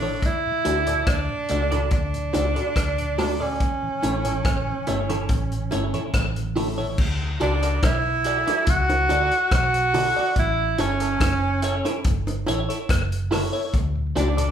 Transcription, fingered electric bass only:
0.00 0.19 A1 medium
0.66 1.04 D2 medium
1.07 1.27 D2 medium
1.50 1.88 C#2 medium
1.92 2.30 D2 loud
2.35 2.54 C#2 medium
2.76 3.57 D2 medium
4.03 4.42 A1 loud
4.45 4.65 A1 medium
4.88 5.26 G1 medium
5.30 5.68 A1 loud
5.72 5.92 G1 medium
6.14 6.94 A1 medium
6.99 7.37 D2 loud
7.42 7.80 C#2 medium
7.83 8.43 B1 medium
8.68 9.06 C#2 medium
9.11 9.30 D2 medium
9.52 10.12 B1 loud
10.36 10.75 A1 loud
10.79 11.17 G1 medium
11.21 11.81 F#1 loud
12.05 12.44 G1 loud
12.48 12.67 A1 medium
12.90 13.49 F#1 loud
13.74 14.12 D2 loud
14.17 14.51 C#2 medium

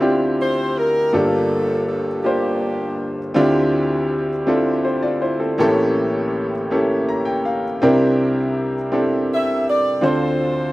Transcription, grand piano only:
0.00 1.10 D2 medium
0.00 1.10 D3 medium
0.00 1.15 C4 medium
0.00 1.13 D4 medium
0.00 1.16 E4 medium
0.00 1.14 F4 medium
0.00 0.02 G4 loud
0.00 0.96 G4 medium
1.12 3.32 G1 medium
1.12 3.33 G2 medium
1.12 2.07 A#3 medium
1.12 2.07 D4 medium
1.12 2.07 F4 medium
1.12 2.08 G4 medium
1.12 2.08 A4 medium
2.24 3.18 A#3 medium
2.24 3.18 D4 medium
2.24 3.18 F4 medium
2.24 3.19 G4 medium
2.24 3.19 C5 medium
3.34 5.55 D2 medium
3.34 5.55 D3 medium
3.34 4.29 C4 medium
3.34 4.29 D4 medium
3.34 4.30 E4 medium
3.34 4.30 F4 medium
3.34 4.30 G4 loud
4.47 4.84 C4 medium
4.47 4.85 D4 medium
4.47 4.83 E4 medium
4.47 4.85 F4 medium
4.47 4.85 A4 medium
4.85 5.02 E4 medium
4.85 5.02 C5 medium
5.03 5.21 F4 medium
5.03 5.21 D5 medium
5.22 5.40 E4 medium
5.22 5.39 C5 medium
5.40 5.75 C4 medium
5.40 5.59 A4 medium
5.58 7.77 A1 medium
5.58 7.77 A2 medium
5.58 6.52 A#3 medium
5.58 6.52 C#4 medium
5.58 6.52 E4 medium
5.58 6.53 G4 medium
5.58 6.53 A4 loud
6.70 7.64 A#3 medium
6.70 7.64 C#4 medium
6.70 7.64 E4 medium
6.70 7.64 G4 medium
6.70 7.64 A4 medium
7.09 7.25 A#5 medium
7.25 7.43 G5 medium
7.45 7.79 F5 medium
7.82 10.00 C2 medium
7.82 9.99 C3 medium
7.82 8.75 C4 medium
7.82 8.75 D4 medium
7.82 8.75 E4 medium
7.82 8.75 G4 medium
7.82 8.75 A#4 loud
8.92 9.85 C4 medium
8.92 9.85 D4 medium
8.92 9.86 E4 medium
8.92 9.85 G4 medium
8.92 9.86 A4 medium
10.01 10.73 D2 medium
10.01 10.73 D3 medium
10.01 10.73 C4 medium
10.01 10.73 D4 medium
10.01 10.73 F4 medium
10.01 10.73 A4 medium
10.01 10.73 C5 medium

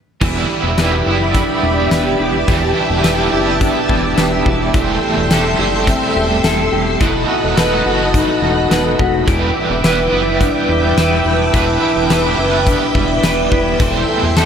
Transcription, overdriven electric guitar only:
0.21 0.76 D3 medium
0.21 0.80 E3 medium
0.21 0.79 G3 medium
0.21 0.79 B3 medium
0.21 0.80 E4 loud
0.77 1.06 D3 medium
0.77 1.07 G3 medium
0.77 1.08 B3 medium
0.82 1.03 E4 medium
1.04 2.50 E4 medium
1.09 2.49 B3 medium
1.14 2.49 G3 soft
2.47 3.02 D3 medium
2.47 3.07 E3 medium
2.47 3.05 G3 loud
2.47 3.06 B3 medium
2.47 3.07 E4 loud
3.04 3.33 D3 medium
3.04 3.33 G3 medium
3.04 3.34 B3 medium
3.08 3.29 E4 medium
3.30 4.76 E4 medium
3.36 4.75 B3 medium
3.40 4.75 G3 medium
4.74 5.31 E2 loud
4.74 5.31 E3 medium
4.74 5.30 G3 medium
4.74 5.29 A3 loud
4.74 5.32 G4 loud
4.74 5.32 C5 medium
5.30 5.60 G3 medium
5.30 5.59 A3 medium
5.30 5.60 G4 medium
5.30 5.56 C5 medium
5.57 7.02 G4 medium
5.57 7.00 C5 medium
5.64 7.02 G3 medium
5.64 7.01 A3 soft
7.00 7.57 E2 medium
7.00 7.61 E3 medium
7.00 7.55 A3 medium
7.00 7.57 D#4 medium
7.00 7.58 F#4 medium
7.00 7.59 B4 loud
7.56 7.85 A3 medium
7.56 7.86 D#4 medium
7.56 7.86 F#4 medium
7.60 7.82 B4 medium
7.83 9.29 B4 medium
7.87 9.28 D#4 medium
7.87 9.28 F#4 medium
7.93 9.27 A3 soft
9.27 9.82 D3 medium
9.27 9.86 E3 medium
9.27 9.85 G3 medium
9.27 9.85 B3 loud
9.27 9.85 B4 medium
9.83 10.12 D3 medium
9.83 10.13 G3 medium
9.83 10.13 B3 medium
9.88 10.09 B4 medium
10.10 11.53 B4 medium
10.15 11.54 B3 medium
10.20 11.54 G3 medium
11.53 12.08 D3 medium
11.53 12.12 E3 medium
11.53 12.10 G3 medium
11.53 12.11 B3 medium
11.53 12.12 B4 loud
12.09 12.38 D3 medium
12.09 12.39 G3 medium
12.09 12.40 B3 medium
12.13 12.35 B4 medium
12.36 13.79 B4 medium
12.41 13.81 B3 medium
12.45 13.81 G3 medium
13.79 14.36 E2 medium
13.79 14.37 E3 medium
13.79 14.36 G3 loud
13.79 14.34 A3 medium
13.79 14.38 G4 medium
13.79 14.38 C5 loud
14.36 14.45 G3 medium
14.36 14.45 A3 medium
14.36 14.45 G4 medium
14.40 14.45 C5 medium

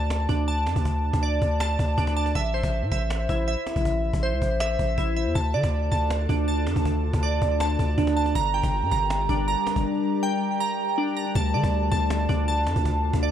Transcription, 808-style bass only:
0.00 0.28 D2 loud
0.29 0.68 D2 loud
0.67 0.75 F2 medium
0.76 1.12 D2 loud
1.13 1.40 D2 loud
1.42 1.78 D2 loud
1.79 1.97 D2 loud
1.98 2.34 D2 loud
2.35 2.62 A1 loud
2.63 2.84 A1 loud
2.82 2.91 A2 loud
2.92 3.28 A1 loud
3.29 3.56 A1 loud
3.76 4.12 A1 loud
4.13 4.34 A1 loud
4.32 4.41 C2 loud
4.42 4.78 A1 loud
4.79 4.97 A1 loud
4.98 5.27 A1 loud
5.26 5.35 E2 loud
5.35 5.56 D2 loud
5.54 5.63 D3 loud
5.63 5.90 D2 loud
5.92 6.28 D2 loud
6.29 6.68 D2 loud
6.67 6.75 F2 loud
6.76 7.12 D2 loud
7.13 7.40 D2 loud
7.42 7.78 D2 loud
7.79 7.97 D2 loud
7.98 8.34 D2 loud
8.35 8.62 G1 loud
8.63 8.84 G1 loud
8.82 8.91 G2 loud
8.92 9.28 G1 loud
9.29 9.56 G1 loud
9.76 9.85 G1 loud
11.35 11.56 D2 loud
11.54 11.63 D3 loud
11.63 11.90 D2 loud
11.92 12.28 D2 loud
12.29 12.68 D2 loud
12.67 12.75 F2 loud
12.76 13.12 D2 loud
13.13 13.31 D2 loud

